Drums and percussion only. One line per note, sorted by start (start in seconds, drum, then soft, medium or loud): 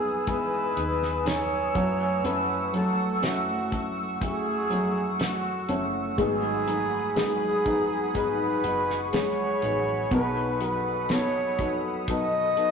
0.27 kick medium
0.27 closed hi-hat medium
0.77 closed hi-hat medium
1.03 snare soft
1.26 snare loud
1.26 closed hi-hat medium
1.75 kick loud
1.75 closed hi-hat medium
2.25 closed hi-hat medium
2.74 closed hi-hat medium
3.23 snare loud
3.23 closed hi-hat medium
3.72 kick medium
3.72 closed hi-hat medium
4.21 kick medium
4.21 closed hi-hat medium
4.71 closed hi-hat medium
5.20 snare loud
5.20 closed hi-hat medium
5.69 closed hi-hat medium
6.18 kick medium
6.18 closed hi-hat medium
6.68 closed hi-hat medium
7.16 snare loud
7.16 closed hi-hat medium
7.66 kick medium
7.66 closed hi-hat medium
8.15 kick medium
8.15 closed hi-hat medium
8.64 closed hi-hat medium
8.90 snare soft
9.13 snare loud
9.13 closed hi-hat medium
9.62 closed hi-hat medium
10.11 kick loud
10.11 closed hi-hat medium
10.61 closed hi-hat medium
11.09 snare loud
11.09 closed hi-hat medium
11.59 kick medium
11.59 closed hi-hat medium
12.08 kick loud
12.08 closed hi-hat medium
12.57 closed hi-hat medium